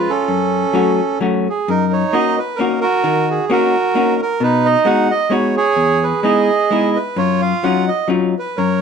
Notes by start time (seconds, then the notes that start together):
Already playing: F4 B4
0.10 C#4 A4
0.28 F#2
0.73 F#3 A3 C#4 F#4
1.21 F#3 A3 C#4 F#4
1.49 G#4
1.68 F#2 D#4 A#4
1.93 C#5
2.13 A#3 C#4 D#4 F#4 D#5
2.38 B4
2.56 A#3 C#4 A#4
2.61 D#4 F#4
2.81 F#4 A#4
3.04 D#3
3.30 G#4
3.50 A#3 C#4 D#4 F#4 A#4
3.95 A#3 C#4 D#4 F#4
4.22 A#4
4.40 B2 D#4 B4
4.66 D#5
4.85 G#3 B3 D#4 F#4 F#5
5.11 D#5
5.30 G#3 B3 D#4 F#4 C#5
5.57 G#4 C#5
5.76 E2
6.03 B4
6.23 G#3 B3 D#4 E4 G#4 D#5
6.71 G#3 B3 D#4 E4
6.96 B4
7.16 F#2 F4 C#5
7.42 F5
7.64 F#3 C#4 D#4 F4 F#5
7.88 D#5
8.08 F#3 C#4 D#4 F4
8.39 B4
8.56 F#2 A#4 C#5